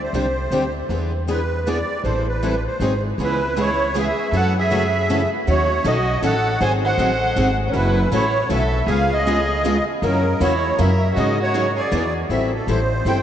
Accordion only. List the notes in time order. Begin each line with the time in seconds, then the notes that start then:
0.03 C5
1.30 B4
1.67 D5
2.04 C5
2.29 B4
2.67 C5
3.23 B4
3.61 C#5
3.99 E5
4.36 F#5
4.59 E5
5.50 C#5
5.87 D#5
6.25 F#5
6.62 G#5
6.86 F#5
7.71 A#4
7.77 B4
8.15 C#5
8.52 E5
8.90 F5
9.13 D#5
10.04 A#4
10.43 C#5
10.80 E5
11.18 D#5
11.43 C#5
11.79 D5
12.31 E5
12.55 A4
12.69 C5
13.08 G5